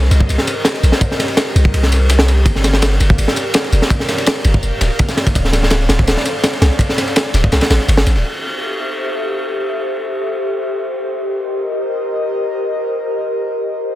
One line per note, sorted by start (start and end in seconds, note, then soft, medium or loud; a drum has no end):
0.00 5.31 G4 medium
0.00 2.43 A#4 medium
0.00 2.43 C5 medium
0.00 2.43 D#5 loud
0.00 snare medium
0.11 0.27 C2 loud
0.11 snare medium
0.11 ride medium
0.11 tambourine medium
0.20 kick loud
0.29 0.38 C2 medium
0.29 ride medium
0.29 tambourine medium
0.38 snare medium
0.47 ride medium
0.47 tambourine medium
0.65 snare loud
0.65 ride medium
0.65 tambourine medium
0.75 snare soft
0.75 ride soft
0.83 0.92 A#1 loud
0.83 ride medium
0.83 tambourine medium
0.92 snare soft
1.01 kick loud
1.01 ride medium
1.01 tambourine medium
1.11 snare soft
1.19 snare soft
1.19 ride medium
1.19 tambourine medium
1.28 snare soft
1.28 ride soft
1.37 snare loud
1.37 ride medium
1.37 tambourine medium
1.55 1.72 C2 loud
1.55 ride medium
1.55 tambourine medium
1.65 kick medium
1.74 2.45 C2 medium
1.74 ride medium
1.83 snare soft
1.92 ride medium
1.92 tambourine medium
2.09 snare loud
2.09 ride medium
2.09 tambourine medium
2.19 snare loud
2.28 ride medium
2.28 tambourine medium
2.46 2.99 G1 loud
2.46 5.32 A#4 medium
2.46 5.32 D5 medium
2.46 8.20 F5 loud
2.46 kick loud
2.46 ride medium
2.46 tambourine medium
2.56 snare soft
2.64 snare soft
2.64 ride medium
2.64 tambourine medium
2.73 snare medium
2.82 snare loud
2.82 ride medium
2.82 tambourine medium
2.92 snare soft
3.00 3.17 G1 medium
3.00 snare medium
3.00 ride medium
3.00 tambourine medium
3.10 kick medium
3.18 3.27 G1 medium
3.18 ride medium
3.18 tambourine medium
3.28 snare medium
3.36 ride medium
3.36 tambourine medium
3.54 snare loud
3.54 ride loud
3.54 tambourine medium
3.64 snare soft
3.64 ride soft
3.72 3.81 F1 loud
3.72 ride medium
3.72 tambourine medium
3.82 snare soft
3.90 kick loud
3.90 ride medium
3.90 tambourine medium
4.00 snare soft
4.08 snare soft
4.08 ride medium
4.08 tambourine medium
4.18 snare soft
4.18 ride soft
4.27 snare loud
4.27 ride loud
4.27 tambourine medium
4.44 4.61 G1 loud
4.44 ride medium
4.44 tambourine medium
4.54 kick medium
4.63 4.71 F1 medium
4.63 tambourine medium
4.81 4.89 D1 medium
4.81 snare loud
4.81 ride medium
4.81 tambourine medium
4.90 snare soft
4.99 kick loud
4.99 snare soft
4.99 ride medium
4.99 tambourine medium
5.09 snare soft
5.09 snare loud
5.09 tambourine medium
5.17 snare soft
5.17 ride medium
5.27 kick medium
5.27 snare soft
5.27 ride medium
5.27 tambourine medium
5.35 5.88 D1 loud
5.35 8.21 A4 medium
5.35 8.21 C5 medium
5.35 8.21 D5 medium
5.35 kick loud
5.35 ride loud
5.35 tambourine medium
5.45 snare soft
5.53 snare medium
5.53 ride medium
5.53 tambourine medium
5.63 snare medium
5.70 snare loud
5.70 ride medium
5.70 tambourine medium
5.81 snare soft
5.89 6.06 D1 loud
5.89 snare loud
5.89 snare medium
5.89 ride medium
5.89 tambourine medium
5.99 kick loud
6.07 6.16 D1 medium
6.07 snare medium
6.07 ride medium
6.07 tambourine medium
6.17 snare medium
6.25 ride medium
6.25 tambourine medium
6.44 snare loud
6.44 ride medium
6.44 tambourine medium
6.53 snare soft
6.53 ride soft
6.62 6.70 C2 loud
6.62 snare loud
6.62 ride medium
6.62 tambourine medium
6.79 kick loud
6.79 ride medium
6.79 tambourine medium
6.89 snare soft
6.98 snare soft
6.98 ride medium
6.98 tambourine medium
7.08 snare soft
7.08 ride soft
7.16 snare loud
7.16 ride medium
7.16 tambourine medium
7.34 7.50 D1 loud
7.34 snare loud
7.34 ride medium
7.34 tambourine medium
7.44 kick medium
7.52 7.61 C2 medium
7.52 snare loud
7.52 snare medium
7.52 ride medium
7.52 tambourine medium
7.61 snare loud
7.61 ride medium
7.70 7.79 A1 medium
7.70 snare loud
7.70 ride medium
7.70 tambourine medium
7.88 8.04 G1 loud
7.88 ride medium
7.88 tambourine medium
7.97 snare loud
8.06 8.17 A1 medium
8.06 ride medium
8.06 tambourine medium
8.16 8.23 D1 medium
8.16 snare soft
8.24 13.95 G4 medium
8.24 11.11 A4 medium
8.24 13.95 C5 medium
8.24 11.11 E5 medium
11.13 13.95 A#4 medium
11.13 13.95 D#5 medium